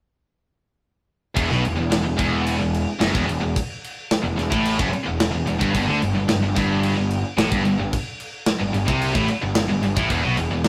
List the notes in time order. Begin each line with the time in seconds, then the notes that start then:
1.36 E1 E2, kick, crash
1.49 B1 B2, snare
1.62 E1 E2, crash
1.76 E1 E2
1.91 E1 E2, snare, crash
2.04 E1 E2
2.18 E1 E2, kick, crash
2.46 crash
2.60 E1 E2
2.74 crash
3.00 F#1 F#2, snare, crash
3.14 E1 E2, kick
3.27 E1 E2, crash
3.41 E1 E2
3.56 kick, crash
3.84 crash
4.11 snare, crash
4.23 E1 E2
4.37 E1 E2, snare, crash
4.51 A1 A2, kick
4.65 crash
4.79 F#1 F#2, kick
4.91 muted distorted electric guitar stroke, muted overdriven electric guitar stroke, muted picked electric bass stroke, crash
5.04 E2
5.09 E1
5.20 snare, crash
5.31 E1 E2
5.46 E1 E2, crash
5.60 G1 G2, kick
5.73 G1 G2, kick, crash
5.86 D2 D3
6.00 G1 G2, crash
6.15 G1 G2
6.28 G1 G2, snare, crash
6.42 G1 G2
6.56 G1 G2, kick, snare, crash
6.83 crash
6.98 G1 G2
7.11 crash
7.37 A1 A2, snare, crash
7.51 G1 G2, kick
7.65 G1 G2, crash
7.80 G1 G2
7.93 kick, crash
8.20 crash
8.46 snare, crash
8.60 G1 G2
8.73 G1 G2, crash
8.86 C2 C3, kick
9.02 crash
9.13 A1 A2, kick
9.28 muted distorted electric guitar stroke, muted picked electric bass stroke, muted overdriven electric guitar stroke, crash
9.42 G1 G2
9.55 snare, crash
9.69 G1 G2
9.83 G1 G2, crash
9.97 A1 A2, kick
10.10 E1 E2, kick, crash
10.23 B1 B2
10.37 E1 E2, crash
10.51 E1 E2
10.64 E1 E2, snare, crash